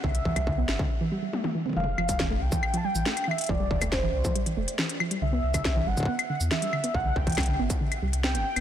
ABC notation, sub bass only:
X:1
M:4/4
L:1/16
Q:1/4=139
K:Flyd
V:1 name="Sub bass" clef=bass
C,,2 C,,4 G,,, z8 z | F,,,2 F,,,4 C,, z4 A,,, z4 | F,,,2 F,,,4 C,, z3 F,,, z4 z | C,,2 C,,4 G,,, z4 E,, z4 |
C,,2 C,,4 G,,, z3 C,,3 G,,, z G,,, |]